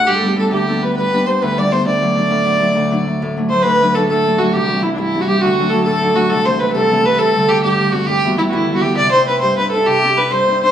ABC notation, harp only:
X:1
M:12/8
L:1/8
Q:3/8=135
K:Dmix
V:1 name="Harp"
G,, [G,B,D] [G,B,D] D,, [G,B,D] [G,B,D] G,, [G,B,D] [G,B,D] D,, [G,B,D] [G,B,D] | D,, [F,A,D] [F,A,D] A,, [F,A,D] [F,A,D] D,, [F,A,D] [F,A,D] A,, [F,A,D] [F,A,D] | D,, [F,A,D] [F,A,D] A,, [F,A,D] [F,A,D] C,, [E,G,C] [E,G,C] G,, [E,G,C] [E,G,C] | D,, [F,A,D] [F,A,D] A,, [F,A,D] [F,A,D] C,, [E,A,C] [E,A,C] C,, [E,A,C] [E,A,C] |
C,, [D,G,C] [D,G,C] G,, [D,G,C] [D,G,C] G,, [E,G,B,] [E,G,B,] D,, [E,G,B,] [E,G,B,] | C, [CDE] [CDE] G,, [CDE] [CDE] C, [CDE] [CDE] G,, [CDE] [CDE] |]